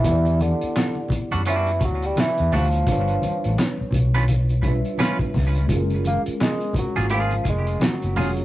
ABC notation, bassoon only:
X:1
M:4/4
L:1/16
Q:"Swing 16ths" 1/4=85
K:Em
V:1 name="Bassoon" clef=bass
E,2 D,4 z2 E,2 F, G, E,2 =F,2- | =F,4 z12 | z2 ^A,2 ^G,2 F,2 ^E,2 G,2 F,4 |]